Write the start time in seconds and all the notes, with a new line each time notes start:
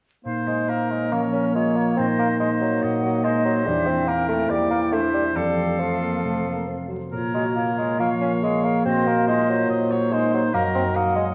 0.24 A#2 A#3 D#4 C5 F5
0.47 G#3 A#3 C5
0.68 A#3 F4 A#4
0.90 G#3 C#5
1.11 F3 A#3 C#4 A#4 C#5
1.33 A#3 C#4
1.55 G#3 F4 C#5
1.76 A#3 C#5
1.97 A#2 C4 D#4 C5 D#5
2.19 A#3 C4
2.40 G#3 D#4 C5 D#5
2.61 F#3 C5
2.82 A#2 D#5 F#5
3.03 F#3
3.24 G#3 D#4 C5 D#5
3.45 F#3 C5
3.66 E2 E3 G3 D4 E5
3.87 A#3 C4
4.07 A#3 C4 A#4 G5
4.28 A3 C5
4.49 E2 G3 A#3 D5 G5
4.70 A#3
4.91 A3 C4 D4 C5 E5
5.13 G3 C5
5.35 F2 F3 G3 C4 A4 F5
5.57 A3
5.79 F3 A3 F4
6.00 A#3 C5
6.23 C3 A3
6.45 A3 A#3
6.67 C4 F4
6.88 F#3 C5
7.11 A#2 A#3 F4 A#4 C#5
7.34 G#3 A#3 F#4
7.56 A#3 F4 C#5
7.77 G#3 C#5
7.99 F3 A#3 F4 C#5 F5
8.21 A#3 C#4
8.43 G#3 F4 G#4 F5
8.64 A#3 C#5
8.85 A#2 C4 F#4 C5 D#5
9.06 A#3 C4
9.27 G#3 D#4 F4 C5 D#5
9.48 F#3 D#5
9.69 A#2 C5 D#5
9.90 F#3 C4 C#5
10.12 G#3 D#4 C5
10.32 F#3 D#5
10.53 F#2 F#3 A#3 F#4 A#4 D#5
10.75 A#3 C4
10.95 A#3 D#4 D#5 F#5
11.15 G#3 D#5